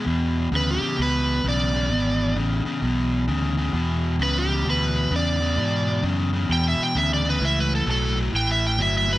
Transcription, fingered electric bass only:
X:1
M:4/4
L:1/8
Q:"Swing" 1/4=131
K:A
V:1 name="Fingered electric bass" clef=bass
E,,2 D,, z C,,2 B,,,2 | G,,,2 A,,, z B,,,2 D,,2 | E,,2 C,,2 D,,2 E,,2 | G,,2 F,,2 E,, z D,,2 |
C,,2 B,,,2 A,,,2 =G,,,2 |]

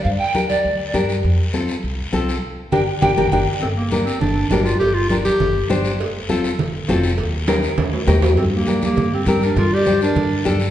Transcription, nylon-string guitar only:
X:1
M:4/4
L:1/8
Q:1/4=202
K:Gm
V:1 name="Nylon-string guitar"
z2 [DGB] z3 [DGB] z | z2 [CFA] z3 [CFA] z | z2 [DGB] z [DGB] [DGB] [DGB] z | z2 [DGB] z3 [DGB] z |
z2 [DGB] z3 [DGc] z | z2 [CFA] z3 [CFA] z | z2 [EGB] z3 [EGB] z | z2 [DGB] z3 [DGB] z |
z2 [DGc] z3 [DGA] z |]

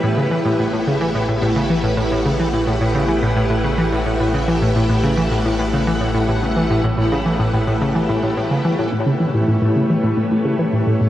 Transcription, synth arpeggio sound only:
X:1
M:4/4
L:1/16
Q:1/4=108
K:Amix
V:1 name="Synth arpeggio sound" clef=bass
A,, C, E, A,, A,, A,, C, E, A,, A,, A,, C, E, A,, A,, A,, | C, E, A,, A,, A,, C, E, A,, A,, A,, C, E, A,, A,, A,, C, | E, A,, A,, A,, C, E, A,, A,, A,, C, E, A,, A,, A,, C, E, | A,, A,, A,, C, E, A,, A,, A,, C, E, A,, A,, A,, C, E, A,, |
A,, C, E, A,, A,, A,, C, E, A,, A,, A,, C, E, A,, A,, A,, |]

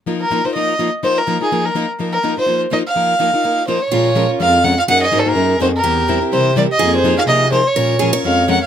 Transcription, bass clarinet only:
X:1
M:4/4
L:1/8
Q:"Swing" 1/4=250
K:Fphr
V:1 name="Bass clarinet" clef=bass
z8 | z8 | z8 | z8 |
B,,4 F,,4 | G,,2 A,,2 G,,2 F,,2 | =E,,4 C,4 | F,,4 C,4 |
B,,4 F,,4 |]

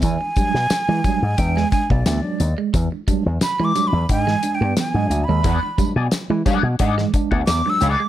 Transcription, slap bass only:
X:1
M:4/4
L:1/16
Q:1/4=89
K:Emix
V:1 name="Slap bass" clef=bass
E,, z2 B,, z E, z G,, E,,2 z B,,, D,, z ^D,, z | E,, z2 E,, z E, z E,, G,,2 z =G,, z ^G,, D,, ^D,, | E,, z2 B,, z E, z B,, G,,2 z D,, E,, z C,, z |]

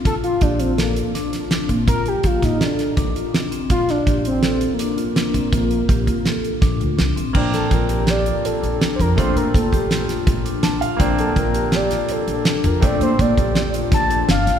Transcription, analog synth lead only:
X:1
M:5/4
L:1/16
Q:1/4=164
K:Bb
V:1 name="Analog synth lead"
A2 F2 D2 C2 B,4 z8 | B2 G2 F2 E2 D4 z8 | F2 D4 C4- C B, B,8- | B,16 z4 |
z2 A2 B4 d4 A4- A3/2 c/2 B2 | c2 B2 A6 z8 z2 | z2 A2 B4 d4 A6 B2 | d2 c2 d6 z2 a4 f4 |]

